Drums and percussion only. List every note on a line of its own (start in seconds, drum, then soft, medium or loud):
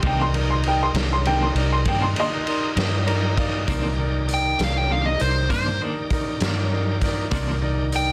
0.03 kick loud
0.03 ride medium
0.34 ride medium
0.63 ride medium
0.95 snare loud
0.95 ride medium
1.25 ride medium
1.56 ride medium
1.85 kick medium
1.85 ride medium
2.16 ride medium
2.47 ride medium
2.77 snare loud
2.77 ride medium
3.08 ride medium
3.37 kick medium
3.37 ride medium
3.68 kick loud
3.68 closed hi-hat medium
4.29 closed hi-hat medium
4.59 snare loud
4.59 closed hi-hat medium
5.20 closed hi-hat soft
5.50 kick medium
5.50 closed hi-hat medium
6.10 kick medium
6.10 closed hi-hat soft
6.40 snare loud
6.40 closed hi-hat medium
7.01 kick medium
7.01 snare soft
7.01 closed hi-hat medium
7.31 kick loud
7.31 closed hi-hat medium
7.92 closed hi-hat medium